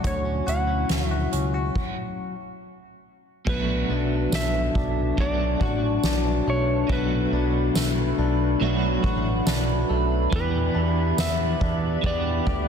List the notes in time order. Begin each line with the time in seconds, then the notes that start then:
Already playing: B2 F#3 A3 D4
0.04 D2 C#4 E4 F#4 C#5, kick, closed hi-hat
0.25 C#4
0.47 D2 F#4 F#5, closed hi-hat
0.67 C#4
0.89 D2 F#3, snare, closed hi-hat
1.07 F#4 E5
1.32 C#2 C#4, closed hi-hat
1.54 F#4
1.75 kick, crash
3.45 B1 B2 F#3 D4 F#4 B4 A5, kick, crash
3.49 A3 D4 B4
3.54 F#4
3.90 B1 D4, ride
4.32 B1 A3 E5, snare, tambourine
4.75 B1 D4, kick, ride
5.17 B1 B2 F#3 A3 D4 F#4 D5, kick
5.60 A1 F#4, kick, ride
5.65 A3
6.03 B1 D4, snare, ride, tambourine
6.47 B1 A3 C#5, ride
6.87 B1 B2 F#3 B5, kick
6.92 A3 D4 B4
6.96 F#4
7.32 B1 D4, ride
7.75 B1 A3, snare, ride, tambourine
8.18 B1 D4, ride
8.60 B1 B2 F#3 A3 D4, ride
8.64 F#4
9.03 A1 D4 F#4, kick
9.09 A3
9.47 B1 D4, snare, ride, tambourine
9.89 B1 A3, ride
10.30 E2 E3 B3 G4 D5 E5, kick
10.36 D4 G4 B4
10.75 E2 D4, ride
11.18 E2 B3 E5, snare, ride, tambourine
11.61 E2 D4, kick, ride
12.01 E2 E3 B3, kick
12.06 D4 D5
12.11 G4
12.47 D2 G4, kick, ride